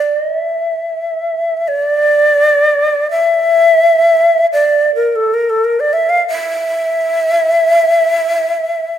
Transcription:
0.00 0.17 D5 medium
0.17 0.36 D#5 medium
0.36 1.57 E5 medium
1.57 1.70 E5 soft
1.68 1.80 C#5 medium
1.80 3.10 D5 medium
3.11 4.46 E5 medium
4.53 4.93 D5 medium
4.95 5.17 A#4 soft
5.16 5.35 A4 medium
5.34 5.51 A#4 medium
5.50 5.66 A4 medium
5.64 5.82 A#4 medium
5.80 5.95 D5 medium
5.93 6.11 E5 medium
6.09 6.27 F5 medium
6.28 8.98 E5 medium

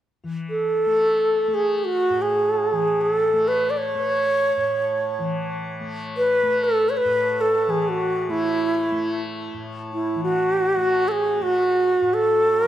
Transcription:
0.24 2.71 E3 soft
0.50 1.56 A4 medium
0.86 1.48 A3 soft
1.48 3.33 A3 soft
1.54 1.78 G#4 medium
1.78 1.86 G#4 soft
1.85 2.23 F#4 medium
2.10 4.57 A2 soft
2.22 3.01 G#4 medium
2.72 5.18 E3 soft
3.01 3.13 G#4 medium
3.13 3.49 A4 medium
3.33 3.95 A3 soft
3.48 3.72 B4 medium
3.70 3.79 D5 medium
3.78 5.48 C#5 medium
3.95 5.81 A3 soft
4.57 7.05 A2 soft
5.19 7.66 E3 soft
5.81 6.43 A3 soft
6.17 6.66 B4 medium
6.43 8.29 A3 soft
6.64 6.91 A4 medium
6.89 6.99 C#5 medium
6.97 7.42 B4 medium
7.05 9.53 A2 medium
7.41 7.71 A4 medium
7.67 10.15 E3 soft
7.67 7.82 G#4 medium
7.82 7.90 G#4 soft
7.89 8.32 F#4 medium
8.29 8.92 A3 soft
8.29 9.21 E4 medium
8.92 10.77 A3 soft
9.54 12.01 A2 soft
9.92 10.21 E4 medium
10.15 12.64 E3 soft
10.24 11.10 F#4 medium
10.77 11.40 A3 medium
11.08 11.44 G#4 medium
11.08 11.13 A4 medium
11.40 12.67 A3 soft
11.40 12.15 F#4 medium
12.02 12.67 A2 soft
12.14 12.61 A4 medium
12.61 12.67 E3 soft
12.61 12.67 A#4 medium

